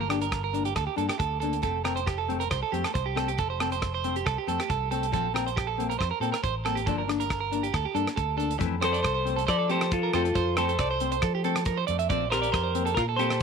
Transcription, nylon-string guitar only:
0.09 A#3 D4
0.53 A#3 D4
0.96 A#3 D4
1.42 A#3 D4
1.62 A3 C4, muted nylon-string guitar stroke
1.84 A3 C4
2.28 A3 C4
2.73 A3 C4
3.16 A3 C4
3.60 A3 C4
4.04 A3 C4
4.47 A3 C4
4.91 A3 C4
5.12 F3 C4, muted nylon-string guitar stroke
5.34 A#3 C4
5.78 A#3 C4
6.21 A#3 C4
6.66 A#3 C4
6.87 F3 A#3 D4
7.08 A#3 D4
7.51 A#3 D4
7.94 A#3 D4
8.37 A#3 D4
8.58 E3 A3 C4
8.81 A3 C4
9.25 A3 C4
9.70 A3 C4
10.14 A3 C4
10.57 A3 C4
11.01 A3 C4
11.44 A3 C4
11.90 A3
12.10 F3 C4, muted nylon-string guitar stroke
12.33 C4
12.75 A#3 C4
13.18 A#3 C4

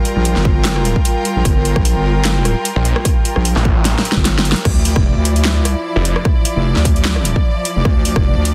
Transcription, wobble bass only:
0.16 A#1
0.36 G1
1.36 A#1
1.45 G1
1.76 A#1
1.96 G1
3.36 A#1
4.16 G1
4.65 D2
4.96 F1
5.16 D2
5.57 C#2
6.56 F1
6.76 D2
7.76 F1
7.85 D2
8.16 F1
8.36 D2

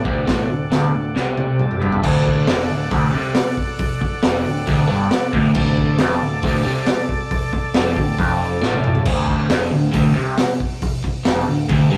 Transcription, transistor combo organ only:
Already playing: A4 D5 F#5
1.39 F#5
1.62 A5
1.79 B5
2.00 A4 D5
2.04 F#5
5.56 A4 D5 A5

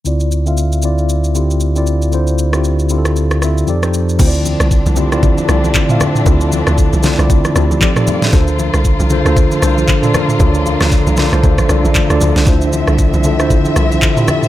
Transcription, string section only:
4.19 D3 F3 A3 C4 D4
7.81 D#3 G3 F4 D5
8.33 D3 F3 A3 A#3
12.47 C4 E5

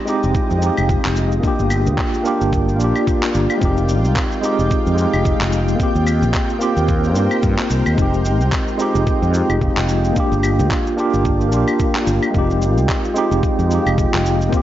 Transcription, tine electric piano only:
Already playing: G#3 C4 D#4 G4
0.05 G#3 C4 D#4
0.09 G4
0.58 G#3 C4
0.63 D#4 G4
1.40 A#3 D4
1.45 F4 G4
2.24 A#3 D4 F4 G4
2.76 A#3 D4
2.81 F4 G4
3.58 G#3 C4
3.63 D#4 G4
4.41 G#3 C4 D#4
4.45 G4
4.94 G#3 C4
4.99 D#4 G4
5.76 A#3 C4
5.81 F4 G4
6.59 A#3 C4 F4 G4
7.12 A#3 C4
7.17 F4 G4
7.94 G#3 C4
7.99 D#4 G4
8.78 G#3 C4 D#4 G4
9.30 G#3 C4
9.36 D#4 G4
10.12 A#3 D4
10.17 F4 G4
10.96 A#3 D4 F4 G4
11.49 A#3 D4
11.54 F4 G4
12.30 G#3 C4
12.36 D#4 G4
13.14 G#3 C4 D#4 G4
13.67 G#3 C4
13.72 D#4 G4
14.49 A#3 C4
14.54 F4 G4

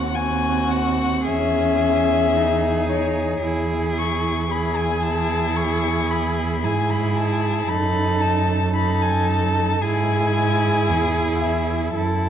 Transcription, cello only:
Already playing: D#2
1.27 E2
3.43 E2
6.64 G#2
7.70 F#2
9.83 G#2
10.89 E2
11.96 F#2

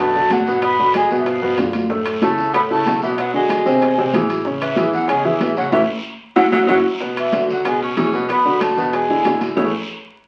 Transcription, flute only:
0.00 A5
0.32 F#5
0.63 B5
0.96 G#5
1.20 E5
1.28 F5
2.22 A5
2.55 B5
2.71 A5
3.03 E5
3.19 F#5
3.35 G#5
4.62 E5
4.93 F#5
5.08 G#5
5.25 E5
5.40 E5
5.56 F#5
5.72 E5
6.36 F#5
6.53 F#5
6.69 F#5
7.19 E5
7.51 F#5
7.68 G#5
7.83 C#6
7.99 C#6
8.31 B5
8.62 A5
8.94 G#5
9.57 C#6

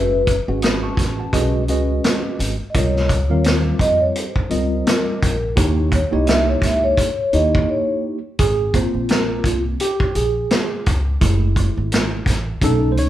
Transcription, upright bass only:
Already playing: F#1
0.48 G#1
0.97 A1
1.33 B1
1.69 C#2
2.39 G#1
2.75 C#2
3.31 D#2
3.79 F2
4.51 C#2
5.23 A#1
5.57 D#2
6.13 C2
6.62 C#2
7.33 D#2
8.39 G#1
8.94 A#1
9.44 C2
10.15 A#1
10.87 C#2
11.22 F#1
11.77 G#1
12.26 A1
12.62 B1
12.98 C#2

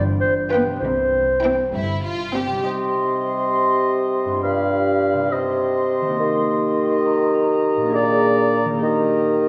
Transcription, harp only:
Already playing: G2 G3 B3 F4
0.65 C3
0.69 G3
0.74 C4
0.78 E4
2.47 C3
2.51 G3
2.56 D#4
2.60 G4
4.25 G2
4.29 B3
4.34 F4
4.38 G4
5.13 C3
5.18 C4
5.22 D#4
5.27 G4
6.01 D#3
6.06 A#3
6.10 D#4
6.15 G4
7.76 A#2
7.81 A#3
7.85 D4
7.90 G#4
8.65 D#3
8.70 A#3
8.74 D#4
8.78 G4

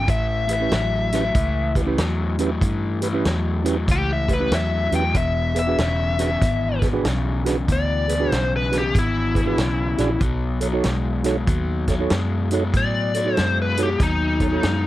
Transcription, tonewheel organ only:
0.49 G4 B4
0.60 C#4 E4 G4 B4
1.12 C#4 E4 G4 B4
1.76 G4 B4
1.86 C#4 E4 G4 B4
2.39 C#4 E4 G4 B4
3.01 G4 B4
3.13 C#4 E4 G4 B4
3.64 C#4 E4 G4 B4
4.28 G4 B4
4.39 C#4 E4 G4 B4
4.91 C#4 E4 G4 B4
5.55 G#4 B4
5.67 D4 F#4 G#4 B4
6.18 D4 F#4 G#4 B4
6.82 G#4 B4
6.93 D4 F#4 G#4 B4
7.45 D4 F#4 G#4 B4
8.08 G#4 B4
8.19 D4 F#4 G#4 B4
8.71 D4 F#4 G#4 B4
9.35 G#4 B4
9.45 D4 F#4 G#4 B4
9.98 D4 F#4 G#4 D5
10.61 A4 C#5
10.72 D#4 F#4 A4 C#5
11.24 D#4 F#4 A4 C#5
11.88 A4 C#5
11.99 D#4 F#4 A4 C#5
12.52 D#4 F#4 A4 C#5
13.15 A4 C#5
13.25 D#4 F#4 A4 C#5
13.78 D#4 F#4 A4 C#5
14.41 A4 C#5
14.51 D#4 F#4 A4 C#5

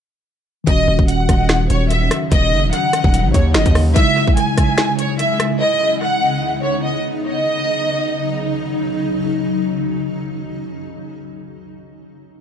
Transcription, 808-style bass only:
0.67 D#1
0.88 D#1
0.99 D#1
1.29 D#1
1.70 D#1
2.32 D#1
2.52 F#1
2.63 D#1
3.04 D#1
3.25 A#1
3.34 D#2
3.55 F#1
3.66 D#2

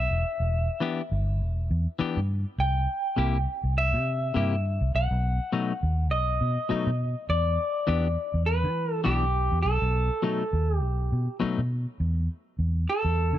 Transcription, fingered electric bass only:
0.11 E1
0.40 E1
1.12 G1
1.42 E1
1.71 E2
2.01 muted fingered electric bass stroke
2.17 G2
2.58 C2
3.18 C2
3.64 C2
3.93 C3
4.36 G2
4.81 C2
4.95 B1
5.11 B1
5.83 D#2
6.12 B1
6.41 B2
6.71 muted fingered electric bass stroke
6.87 B2
7.29 E2
7.89 E2
8.34 E2
8.64 E3
9.06 B1
9.52 E2
9.65 B1
9.82 B1
10.53 D#2
10.83 B1
11.12 B2
11.42 muted fingered electric bass stroke
11.58 B2
12.00 E2
12.59 E2
13.05 E2
13.33 E3

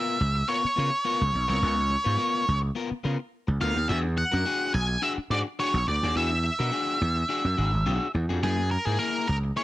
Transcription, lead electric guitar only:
Already playing: E5
0.48 C#5
1.49 C#5
3.61 F5
3.89 E5
4.18 F#5
4.74 G#5
5.03 E5
5.31 D5
5.60 C#5
5.88 D5
6.17 E5
8.43 G#4
8.71 A#4
8.85 G#4
8.99 A#4
9.28 A#4
9.57 C#5

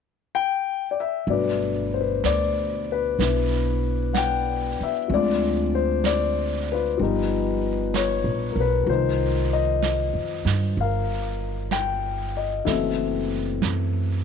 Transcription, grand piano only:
0.35 G5
0.91 D5
1.00 E5
1.29 B2 F#3 A3 D4 B4 D5
1.94 C5
2.01 B4
2.26 D5
2.92 B4
3.19 B3 D4 E4
4.13 F#5 G5
4.83 E5
5.08 F3 G#3 C4
5.13 D4 F4 D5
5.75 C5
6.06 D5
6.72 F4 B4
6.97 F3 G3 B3
7.03 D#4
7.95 C#5
8.51 A#4
8.60 B4
8.83 D#3 F3
8.89 A#3 D#4 C5
9.53 D#5
10.80 A#4 F5
11.72 G5
12.37 D#5
12.65 E3 F#3 A3 A4 E5
12.70 C4

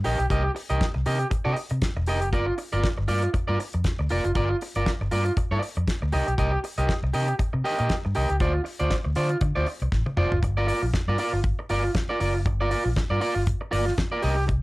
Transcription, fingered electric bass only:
0.05 A#1
0.19 B1
0.31 C2
0.70 C2
0.96 C2
1.06 C3
1.46 C3
1.71 C3
1.97 E1
2.08 F1
2.23 F#1
2.33 G1
2.73 G1
2.98 G1
3.09 G2
3.34 muted fingered electric bass stroke
3.49 G2
3.74 F2
4.00 D2
4.11 F1
4.25 F#1
4.36 G1
4.76 G1
5.01 G1
5.12 G2
5.37 muted fingered electric bass stroke
5.51 G2
5.77 F2
6.03 D2
6.13 C2
6.28 B1
6.39 C2
6.78 C2
7.03 C2
7.15 C3
7.40 muted fingered electric bass stroke
7.54 C3
7.80 A#2
8.06 G2
8.17 C2
8.30 C#2
8.41 D2
8.81 D2
9.06 D2
9.17 D3
9.41 D3
9.57 D2
9.82 C2
9.92 A1
10.17 F1
10.31 F#1
10.43 G1
10.83 A#1
11.08 G2
11.33 G1
11.70 G1
12.21 F#1
12.46 G1
12.86 A#1
13.10 G2
13.36 G1
13.73 G1
14.24 C2

